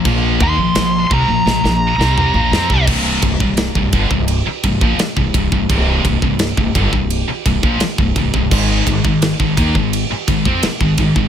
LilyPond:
<<
  \new Staff \with { instrumentName = "Lead electric guitar" } { \time 4/4 \key c \minor \tempo 4 = 85 r8 c'''4 bes''2~ bes''8 | r1 | r1 | r1 | }
  \new Staff \with { instrumentName = "Distorted electric guitar" } { \clef bass \time 4/4 \key c \minor <bes, f bes>8 <ees bes>16 <bes, f>16 <bes, f>8 <c g>16 <bes, f>16 <bes, f>16 <bes, f>8 <c g c'>8 <bes, f>16 <f c'>16 <c g>16 | <c, g, c>8 <c, g,>16 <c, g,>8 <c, g,>16 <g, d>16 <c, g,>8 r16 <c, g,>16 <bes, f>16 r16 <c, g,>16 <c, g,>16 <c, g,>16 | <c, g, c>8 <c, g,>16 <c, g,>8 <c, g,>16 <g, d>16 <c, g,>8 r16 <c, g,>16 <bes, f>16 r16 <c, g,>16 <c, g,>16 <c, g,>16 | <aes, ees aes>8 <aes, ees>16 <aes, ees>8 <aes, ees>16 <ees bes>16 <aes, ees>8 r16 <aes, ees>16 <f c'>16 r16 <aes, ees>16 <aes, ees>16 <aes, ees>16 | }
  \new Staff \with { instrumentName = "Distorted electric guitar" } { \clef bass \time 4/4 \key c \minor <bes, f bes>8 <ees bes>16 <bes, f>16 <bes, f>8 <c g>16 <bes, f>16 <bes, f>16 <bes, f>8 <c g c'>8 <bes, f>16 <f c'>16 <c g>16 | <c, g, c>8 <c, g,>16 <c, g,>8 <c, g,>16 <g, d>16 <c, g,>8 r16 <c, g,>16 <bes, f>16 r16 <c, g,>16 <c, g,>16 <c, g,>16 | <c, g, c>8 <c, g,>16 <c, g,>8 <c, g,>16 <g, d>16 <c, g,>8 r16 <c, g,>16 <bes, f>16 r16 <c, g,>16 <c, g,>16 <c, g,>16 | <aes, ees aes>8 <aes, ees>16 <aes, ees>8 <aes, ees>16 <ees bes>16 <aes, ees>8 r16 <aes, ees>16 <f c'>16 r16 <aes, ees>16 <aes, ees>16 <aes, ees>16 | }
  \new Staff \with { instrumentName = "Upright bass" } { \clef bass \time 4/4 \key c \minor bes,,8 ees,16 bes,,16 bes,,8 c,16 bes,,16 bes,,16 bes,,8 c,8 bes,,16 f,16 c,16 | c,,8 c,,16 c,,8 c,,16 g,,16 c,,8 r16 c,,16 bes,,16 r16 c,,16 c,,16 c,,16 | c,,8 c,,16 c,,8 c,,16 g,,16 c,,8 r16 c,,16 bes,,16 r16 c,,16 c,,16 c,,16 | aes,,8 aes,,16 aes,,8 aes,,16 ees,16 aes,,8 r16 aes,,16 f,16 r16 aes,,16 aes,,16 aes,,16 | }
  \new DrumStaff \with { instrumentName = "Drums" } \drummode { \time 4/4 <cymc bd>8 bd8 <cymc sn>8 bd8 sn16 sn8 sn16 toml8 sn16 bd16 | <cymc bd>8 <bd cymr>16 bd16 <cymr sn>16 bd16 <bd cymr>16 bd16 cymr8 <bd cymr>16 bd16 <cymr sn>16 bd16 <bd cymr>16 bd16 | <bd cymr>8 <bd cymr>16 bd16 <cymr sn>16 bd16 <bd cymr>16 bd16 cymr8 <bd cymr>16 bd16 <cymr sn>16 bd16 <bd cymr>16 bd16 | <cymc bd>8 <bd cymr>16 bd16 <cymr sn>16 bd16 <bd cymr>16 bd16 cymr8 <bd cymr>16 bd16 <cymr sn>16 bd16 <bd cymr>16 bd16 | }
>>